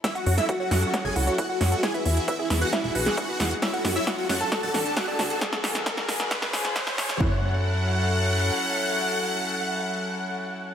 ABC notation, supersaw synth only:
X:1
M:4/4
L:1/16
Q:1/4=134
K:F#m
V:1 name="Supersaw synth"
[Ee] F F [Ee] F F [Ff] F F [Gg] F F [Ff] F F F | [Gg] E E E [Ee] E E [Ff] E E [Ff]4- [Ff] z | [Ee] F F [Ee] F F [Ff] A A [Aa] A A [Ff] A A A | z16 |
f16- | f16 |]